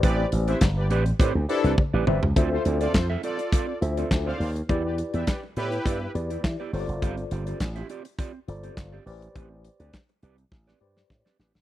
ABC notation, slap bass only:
X:1
M:4/4
L:1/16
Q:1/4=103
K:Ddor
V:1 name="Slap bass" clef=bass
A,,,2 A,,,2 G,,,2 A,,,2 A,, D,, z C,, z A,,, G,,, ^C,, | D,,2 D,,2 F,,2 z4 D,,2 D,,2 _E,,2 | E,,3 E,, z2 A,,2 G,,2 E,,2 E, z G,,, ^F,,, | G,,,2 G,,,2 A,,,2 z4 G,,,2 G,,,2 A,,,2 |
A,,,3 D,, z2 C,,2 A,,,2 G,,2 A,, z A,,, ^G,,, |]